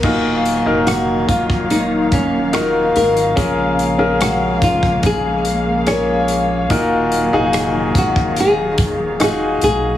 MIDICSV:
0, 0, Header, 1, 6, 480
1, 0, Start_track
1, 0, Tempo, 833333
1, 20, Time_signature, 4, 2, 24, 8
1, 5746, End_track
2, 0, Start_track
2, 0, Title_t, "Nylon-string guitar"
2, 0, Program_c, 0, 24
2, 0, Note_on_c, 0, 70, 88
2, 497, Note_off_c, 0, 70, 0
2, 499, Note_on_c, 0, 66, 80
2, 738, Note_off_c, 0, 66, 0
2, 741, Note_on_c, 0, 65, 76
2, 963, Note_off_c, 0, 65, 0
2, 984, Note_on_c, 0, 63, 84
2, 1205, Note_off_c, 0, 63, 0
2, 1226, Note_on_c, 0, 61, 73
2, 1446, Note_off_c, 0, 61, 0
2, 1460, Note_on_c, 0, 70, 73
2, 1700, Note_off_c, 0, 70, 0
2, 1707, Note_on_c, 0, 70, 88
2, 2400, Note_off_c, 0, 70, 0
2, 2429, Note_on_c, 0, 66, 77
2, 2648, Note_off_c, 0, 66, 0
2, 2670, Note_on_c, 0, 65, 69
2, 2888, Note_off_c, 0, 65, 0
2, 2916, Note_on_c, 0, 68, 87
2, 3365, Note_off_c, 0, 68, 0
2, 3390, Note_on_c, 0, 70, 65
2, 3722, Note_off_c, 0, 70, 0
2, 4597, Note_on_c, 0, 66, 81
2, 4812, Note_off_c, 0, 66, 0
2, 4840, Note_on_c, 0, 68, 96
2, 5287, Note_off_c, 0, 68, 0
2, 5319, Note_on_c, 0, 68, 82
2, 5544, Note_off_c, 0, 68, 0
2, 5551, Note_on_c, 0, 68, 95
2, 5746, Note_off_c, 0, 68, 0
2, 5746, End_track
3, 0, Start_track
3, 0, Title_t, "Grand piano"
3, 0, Program_c, 1, 0
3, 0, Control_c, 1, 64, 127
3, 21, Note_on_c, 1, 63, 56
3, 21, Note_on_c, 1, 65, 58
3, 24, Note_on_c, 1, 46, 52
3, 25, Note_on_c, 1, 66, 56
3, 25, Note_on_c, 1, 70, 65
3, 27, Control_c, 1, 64, 0
3, 134, Control_c, 1, 64, 127
3, 362, Note_off_c, 1, 63, 0
3, 362, Note_off_c, 1, 65, 0
3, 364, Note_off_c, 1, 66, 0
3, 364, Note_off_c, 1, 70, 0
3, 380, Note_on_c, 1, 63, 55
3, 381, Note_on_c, 1, 77, 49
3, 383, Note_on_c, 1, 54, 51
3, 386, Note_on_c, 1, 70, 66
3, 719, Note_off_c, 1, 46, 0
3, 1292, Note_off_c, 1, 63, 0
3, 1292, Note_off_c, 1, 77, 0
3, 1293, Note_off_c, 1, 54, 0
3, 1295, Note_off_c, 1, 70, 0
3, 1457, Note_on_c, 1, 63, 59
3, 1459, Note_on_c, 1, 65, 60
3, 1460, Note_on_c, 1, 66, 55
3, 1461, Note_on_c, 1, 70, 70
3, 1914, Note_off_c, 1, 63, 0
3, 1915, Note_off_c, 1, 65, 0
3, 1916, Note_off_c, 1, 66, 0
3, 1916, Note_off_c, 1, 70, 0
3, 1935, Note_on_c, 1, 61, 64
3, 1937, Note_on_c, 1, 65, 60
3, 1940, Note_on_c, 1, 68, 59
3, 1941, Note_on_c, 1, 70, 68
3, 1947, Control_c, 1, 64, 0
3, 2038, Control_c, 1, 64, 127
3, 2280, Note_off_c, 1, 61, 0
3, 2280, Note_off_c, 1, 65, 0
3, 2282, Note_off_c, 1, 68, 0
3, 2282, Note_off_c, 1, 70, 0
3, 2294, Note_on_c, 1, 61, 58
3, 2297, Note_on_c, 1, 77, 57
3, 2299, Note_on_c, 1, 68, 57
3, 2299, Note_on_c, 1, 70, 68
3, 3209, Note_off_c, 1, 61, 0
3, 3210, Note_off_c, 1, 77, 0
3, 3211, Note_off_c, 1, 68, 0
3, 3211, Note_off_c, 1, 70, 0
3, 3381, Note_on_c, 1, 61, 64
3, 3381, Note_on_c, 1, 65, 61
3, 3382, Note_on_c, 1, 68, 57
3, 3385, Note_on_c, 1, 73, 71
3, 3836, Note_off_c, 1, 61, 0
3, 3837, Note_off_c, 1, 65, 0
3, 3837, Note_off_c, 1, 68, 0
3, 3839, Note_off_c, 1, 73, 0
3, 3861, Note_on_c, 1, 63, 77
3, 3862, Note_on_c, 1, 46, 70
3, 3862, Note_on_c, 1, 65, 70
3, 3864, Note_on_c, 1, 66, 72
3, 3865, Note_on_c, 1, 70, 87
3, 3868, Control_c, 1, 64, 0
3, 3972, Control_c, 1, 64, 127
3, 4202, Note_off_c, 1, 63, 0
3, 4203, Note_off_c, 1, 65, 0
3, 4204, Note_off_c, 1, 66, 0
3, 4204, Note_off_c, 1, 70, 0
3, 4222, Note_on_c, 1, 63, 78
3, 4223, Note_on_c, 1, 77, 74
3, 4225, Note_on_c, 1, 66, 66
3, 4227, Note_on_c, 1, 68, 84
3, 4558, Note_off_c, 1, 46, 0
3, 5133, Note_off_c, 1, 63, 0
3, 5133, Note_off_c, 1, 77, 0
3, 5134, Note_off_c, 1, 66, 0
3, 5136, Note_off_c, 1, 68, 0
3, 5298, Note_on_c, 1, 63, 66
3, 5301, Note_on_c, 1, 65, 56
3, 5302, Note_on_c, 1, 66, 63
3, 5302, Note_on_c, 1, 68, 73
3, 5746, Note_off_c, 1, 63, 0
3, 5746, Note_off_c, 1, 65, 0
3, 5746, Note_off_c, 1, 66, 0
3, 5746, Note_off_c, 1, 68, 0
3, 5746, End_track
4, 0, Start_track
4, 0, Title_t, "String section"
4, 0, Program_c, 2, 48
4, 18, Note_on_c, 2, 77, 64
4, 20, Note_on_c, 2, 54, 58
4, 20, Note_on_c, 2, 58, 61
4, 21, Note_on_c, 2, 51, 60
4, 1920, Note_off_c, 2, 58, 0
4, 1921, Note_off_c, 2, 51, 0
4, 1921, Note_off_c, 2, 54, 0
4, 1938, Note_on_c, 2, 56, 57
4, 1941, Note_on_c, 2, 58, 59
4, 1944, Note_on_c, 2, 49, 62
4, 3840, Note_off_c, 2, 56, 0
4, 3843, Note_off_c, 2, 49, 0
4, 3863, Note_on_c, 2, 51, 68
4, 3863, Note_on_c, 2, 54, 65
4, 5746, Note_off_c, 2, 51, 0
4, 5746, Note_off_c, 2, 54, 0
4, 5746, Note_off_c, 2, 58, 0
4, 5746, Note_off_c, 2, 77, 0
4, 5746, End_track
5, 0, Start_track
5, 0, Title_t, "Sub bass"
5, 0, Program_c, 3, 38
5, 19, Note_on_c, 3, 27, 93
5, 356, Note_off_c, 3, 27, 0
5, 382, Note_on_c, 3, 29, 79
5, 718, Note_off_c, 3, 29, 0
5, 741, Note_on_c, 3, 27, 92
5, 1677, Note_off_c, 3, 27, 0
5, 1704, Note_on_c, 3, 32, 81
5, 1925, Note_off_c, 3, 32, 0
5, 1942, Note_on_c, 3, 34, 84
5, 3838, Note_off_c, 3, 34, 0
5, 3859, Note_on_c, 3, 27, 92
5, 4196, Note_off_c, 3, 27, 0
5, 4221, Note_on_c, 3, 29, 76
5, 4557, Note_off_c, 3, 29, 0
5, 4579, Note_on_c, 3, 27, 94
5, 5516, Note_off_c, 3, 27, 0
5, 5542, Note_on_c, 3, 35, 84
5, 5746, Note_off_c, 3, 35, 0
5, 5746, End_track
6, 0, Start_track
6, 0, Title_t, "Drums"
6, 17, Note_on_c, 9, 49, 80
6, 19, Note_on_c, 9, 36, 85
6, 74, Note_off_c, 9, 49, 0
6, 76, Note_off_c, 9, 36, 0
6, 262, Note_on_c, 9, 42, 55
6, 320, Note_off_c, 9, 42, 0
6, 502, Note_on_c, 9, 42, 88
6, 508, Note_on_c, 9, 37, 94
6, 559, Note_off_c, 9, 42, 0
6, 565, Note_off_c, 9, 37, 0
6, 741, Note_on_c, 9, 36, 74
6, 743, Note_on_c, 9, 42, 63
6, 798, Note_off_c, 9, 36, 0
6, 801, Note_off_c, 9, 42, 0
6, 862, Note_on_c, 9, 36, 71
6, 920, Note_off_c, 9, 36, 0
6, 981, Note_on_c, 9, 42, 65
6, 1039, Note_off_c, 9, 42, 0
6, 1220, Note_on_c, 9, 42, 65
6, 1221, Note_on_c, 9, 36, 72
6, 1277, Note_off_c, 9, 42, 0
6, 1278, Note_off_c, 9, 36, 0
6, 1458, Note_on_c, 9, 42, 74
6, 1467, Note_on_c, 9, 37, 86
6, 1516, Note_off_c, 9, 42, 0
6, 1524, Note_off_c, 9, 37, 0
6, 1703, Note_on_c, 9, 42, 59
6, 1761, Note_off_c, 9, 42, 0
6, 1824, Note_on_c, 9, 42, 44
6, 1881, Note_off_c, 9, 42, 0
6, 1941, Note_on_c, 9, 36, 94
6, 1941, Note_on_c, 9, 42, 81
6, 1999, Note_off_c, 9, 36, 0
6, 1999, Note_off_c, 9, 42, 0
6, 2183, Note_on_c, 9, 42, 56
6, 2241, Note_off_c, 9, 42, 0
6, 2423, Note_on_c, 9, 42, 82
6, 2429, Note_on_c, 9, 37, 101
6, 2480, Note_off_c, 9, 42, 0
6, 2487, Note_off_c, 9, 37, 0
6, 2660, Note_on_c, 9, 36, 79
6, 2661, Note_on_c, 9, 42, 69
6, 2718, Note_off_c, 9, 36, 0
6, 2718, Note_off_c, 9, 42, 0
6, 2781, Note_on_c, 9, 36, 73
6, 2838, Note_off_c, 9, 36, 0
6, 2897, Note_on_c, 9, 42, 73
6, 2899, Note_on_c, 9, 36, 78
6, 2955, Note_off_c, 9, 42, 0
6, 2957, Note_off_c, 9, 36, 0
6, 3138, Note_on_c, 9, 42, 58
6, 3196, Note_off_c, 9, 42, 0
6, 3379, Note_on_c, 9, 42, 77
6, 3387, Note_on_c, 9, 37, 87
6, 3437, Note_off_c, 9, 42, 0
6, 3445, Note_off_c, 9, 37, 0
6, 3619, Note_on_c, 9, 42, 65
6, 3676, Note_off_c, 9, 42, 0
6, 3859, Note_on_c, 9, 42, 80
6, 3860, Note_on_c, 9, 36, 89
6, 3917, Note_off_c, 9, 36, 0
6, 3917, Note_off_c, 9, 42, 0
6, 4100, Note_on_c, 9, 42, 60
6, 4157, Note_off_c, 9, 42, 0
6, 4339, Note_on_c, 9, 42, 90
6, 4345, Note_on_c, 9, 37, 98
6, 4396, Note_off_c, 9, 42, 0
6, 4402, Note_off_c, 9, 37, 0
6, 4580, Note_on_c, 9, 36, 75
6, 4580, Note_on_c, 9, 42, 68
6, 4637, Note_off_c, 9, 36, 0
6, 4637, Note_off_c, 9, 42, 0
6, 4700, Note_on_c, 9, 36, 81
6, 4758, Note_off_c, 9, 36, 0
6, 4818, Note_on_c, 9, 42, 72
6, 4876, Note_off_c, 9, 42, 0
6, 5056, Note_on_c, 9, 42, 63
6, 5059, Note_on_c, 9, 36, 76
6, 5113, Note_off_c, 9, 42, 0
6, 5116, Note_off_c, 9, 36, 0
6, 5299, Note_on_c, 9, 42, 80
6, 5307, Note_on_c, 9, 37, 90
6, 5357, Note_off_c, 9, 42, 0
6, 5365, Note_off_c, 9, 37, 0
6, 5538, Note_on_c, 9, 42, 62
6, 5596, Note_off_c, 9, 42, 0
6, 5746, End_track
0, 0, End_of_file